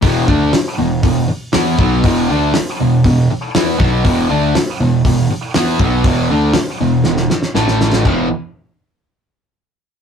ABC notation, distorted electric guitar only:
X:1
M:4/4
L:1/8
Q:1/4=120
K:Alyd
V:1 name="Distorted electric guitar" clef=bass
[E,,B,,E,] [=D,A,=D] z [E,,B,,] [E,,B,,] z [E,B,E] [B,,F,B,] | [E,,B,,E,] [=D,A,=D] z [E,,B,,] [E,,B,,] z [E,B,E] [B,,F,B,] | [E,,B,,E,] [=D,A,=D] z [E,,B,,] [E,,B,,] z [E,B,E] [B,,F,B,] | [E,,B,,E,] [=D,A,=D] z [E,,B,,] [E,,B,,] z [A,,E,A,]2 |
[E,,B,,E,] z6 z |]